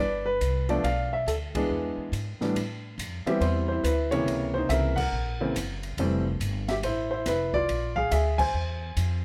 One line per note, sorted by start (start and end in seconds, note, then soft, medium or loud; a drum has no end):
0.00 0.40 G1 medium
0.00 0.24 B4 medium
0.00 0.24 D5 medium
0.26 0.66 B4 loud
0.41 0.83 C2 medium
0.41 hi-hat pedal medium
0.41 ride medium
0.69 0.83 F3 medium
0.69 0.83 A3 medium
0.69 0.83 B3 medium
0.69 0.83 D4 medium
0.69 0.84 D5 medium
0.69 ride soft
0.83 1.25 B1 medium
0.83 1.67 D5 medium
0.83 1.13 F5 medium
0.83 ride medium
1.13 1.28 E5 medium
1.26 1.68 D2 medium
1.26 1.34 A4 medium
1.26 hi-hat pedal medium
1.26 ride medium
1.55 2.10 E3 medium
1.55 2.11 G#3 medium
1.55 2.11 B3 medium
1.55 2.11 D4 medium
1.55 2.09 G#4 medium
1.55 kick medium
1.55 ride medium
1.70 1.96 E2 medium
1.97 muted upright bass stroke soft
2.12 2.38 G#2 medium
2.12 hi-hat pedal soft
2.12 ride medium
2.40 2.55 A2 medium
2.40 2.55 E3 medium
2.40 2.55 G3 medium
2.40 2.55 B3 medium
2.40 2.55 D4 medium
2.40 muted upright bass stroke soft
2.40 snare soft
2.55 2.97 A2 medium
2.55 ride medium
2.98 3.24 F2 medium
2.98 hi-hat pedal medium
2.98 ride medium
3.26 3.81 E3 medium
3.26 3.81 G3 medium
3.26 3.82 B3 medium
3.26 3.82 C4 medium
3.26 3.42 G4 medium
3.26 3.42 E5 medium
3.26 muted upright bass stroke soft
3.26 ride soft
3.40 3.83 E2 medium
3.40 3.68 E4 medium
3.40 3.67 C5 medium
3.40 ride medium
3.68 3.85 E4 medium
3.68 3.84 C5 medium
3.84 4.25 D2 medium
3.84 4.12 E4 medium
3.84 4.12 B4 medium
3.84 hi-hat pedal medium
3.84 ride medium
4.11 4.68 C3 medium
4.11 4.67 C#3 medium
4.11 4.67 E3 medium
4.11 4.67 A#3 medium
4.11 4.53 E4 medium
4.11 4.56 C#5 medium
4.11 ride soft
4.26 4.68 C#2 medium
4.26 ride medium
4.54 4.71 D#4 medium
4.54 4.70 C5 medium
4.69 5.11 C2 medium
4.69 4.95 C#3 medium
4.69 4.95 E3 medium
4.69 4.95 A#3 medium
4.69 4.95 C4 medium
4.69 4.95 E5 medium
4.69 hi-hat pedal medium
4.69 ride medium
4.73 4.97 A#4 medium
4.96 5.80 A#4 medium
4.96 5.78 F#5 loud
4.96 kick medium
4.96 crash medium
5.12 5.54 A#1 medium
5.40 5.54 C#3 medium
5.40 5.54 E3 medium
5.40 5.54 A#3 medium
5.40 5.55 C4 medium
5.55 5.97 F#1 medium
5.55 hi-hat pedal medium
5.55 ride medium
5.83 ride soft
5.97 6.39 F1 medium
5.97 6.23 E3 medium
5.97 6.24 G3 medium
5.97 6.24 A3 medium
5.97 6.24 C4 medium
5.97 ride medium
6.40 6.82 G1 medium
6.40 hi-hat pedal medium
6.40 ride medium
6.68 6.76 G4 medium
6.68 6.74 E5 medium
6.68 snare soft
6.68 ride soft
6.83 7.25 A1 medium
6.83 7.11 E4 medium
6.83 7.09 C5 medium
6.83 ride medium
7.11 7.27 E4 medium
7.11 7.27 C5 medium
7.26 7.68 F1 medium
7.26 7.54 E4 medium
7.26 7.55 B4 medium
7.26 snare soft
7.26 hi-hat pedal medium
7.26 ride medium
7.54 7.94 F4 medium
7.54 7.98 D5 loud
7.54 kick medium
7.69 8.10 A#1 medium
7.69 ride medium
7.96 8.11 G#4 medium
7.96 8.10 F5 loud
7.96 kick medium
8.11 8.53 D2 medium
8.11 8.38 G#4 medium
8.11 8.40 E5 medium
8.11 hi-hat pedal medium
8.11 ride medium
8.38 9.21 C5 medium
8.38 9.20 G#5 loud
8.38 kick medium
8.38 crash medium
8.54 8.95 E2 medium
8.97 9.25 F2 medium
8.97 hi-hat pedal medium
8.97 ride medium